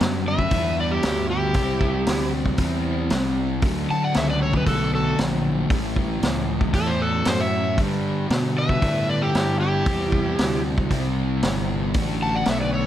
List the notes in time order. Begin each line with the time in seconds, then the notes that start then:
Already playing: G2 D3 G3 B3 D4
0.00 F#2, snare, open hi-hat
0.27 B4 E5
0.39 kick
0.51 E2 G2 D3 G3 B3 D4, kick, open hi-hat
0.79 B4 D5
0.91 E4 G4
1.03 D2, snare, open hi-hat
1.30 E4 G4
1.54 C2 C3 G3 C4 E4, kick, open hi-hat
1.81 kick
2.07 D2, snare, open hi-hat
2.46 kick
2.58 E2 C3 G3 C4 E4, kick, open hi-hat
3.10 C2, snare, open hi-hat
3.62 D2 D3 F#3 A3 D4, kick, open hi-hat
3.90 F#5 A5, muted fingered electric bass stroke
4.02 D5 F#5
4.14 C#2 A4 E5, snare, open hi-hat
4.29 B4 D5
4.42 A4 C#5
4.53 G4 B4, kick
4.66 B1 D3 F#3 A3 D4 F#4 A4, kick, open hi-hat
4.95 F#4 A4
5.18 A#1, snare, open hi-hat
5.70 A1 A2 E3 A3 C#4 E4, kick, open hi-hat
5.96 kick
6.23 C#2, snare, open hi-hat
6.61 kick
6.74 E2 A2 E3 A3 C#4 E4 A4, kick, open hi-hat
6.87 G4 C5
7.02 F#4 A4
7.25 F#2 A4 C5, snare, open hi-hat
7.41 C#5 E5
7.78 G2 D3 G3 B3 D4, kick, open hi-hat
8.30 B2, snare, open hi-hat
8.57 B4 E5
8.69 kick
8.82 G2 A2 D3 G3 B3 D4, kick, open hi-hat
9.09 B4 D5
9.22 E4 G4
9.35 G2, snare, open hi-hat
9.61 E4 G4
9.86 E2 C3 G3 C4 E4, kick, open hi-hat
10.12 kick
10.39 D2, snare, open hi-hat
10.78 kick
10.91 C2 C3 G3 C4 E4, kick, open hi-hat
11.43 G1, snare, open hi-hat
11.94 A1 D3 A3 D4 F#4, kick, open hi-hat
12.22 F#5 A5
12.34 D5 F#5
12.46 B1 A4, snare, open hi-hat
12.50 E5
12.61 B4 D5
12.74 A4 C#5